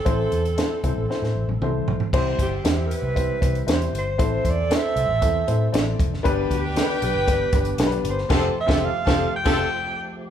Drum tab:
CC |----------------|x---------------|----------------|----------------|
HH |x-xxx-x---------|--x-x-x-x-xxxxx-|x-x-x-x-x-x-x-x-|x-x-x-x-x-xxxxx-|
SD |----o---oo------|----o-------o---|----o-------o--o|----o-------o--o|
T1 |-----------o----|----------------|----------------|----------------|
T2 |------------o---|----------------|----------------|----------------|
FT |--------------oo|----------------|----------------|----------------|
BD |o-----o---------|o-o-----o-o-----|o-o-----o-----o-|o-o-----o-o-----|

CC |x--------x------|
HH |----------------|
SD |o--o--o--o------|
T1 |----------------|
T2 |----------------|
FT |----------------|
BD |o--o--o--o------|